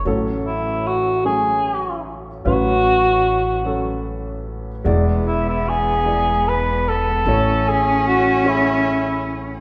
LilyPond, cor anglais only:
\new Staff \with { instrumentName = "Cor anglais" } { \time 6/8 \key a \major \tempo 4. = 50 r8 e'8 fis'8 gis'4 r8 | fis'2 r4 | r8 e'16 e'16 gis'4 b'8 a'8~ | a'8 gis'8 fis'8 e'4 r8 | }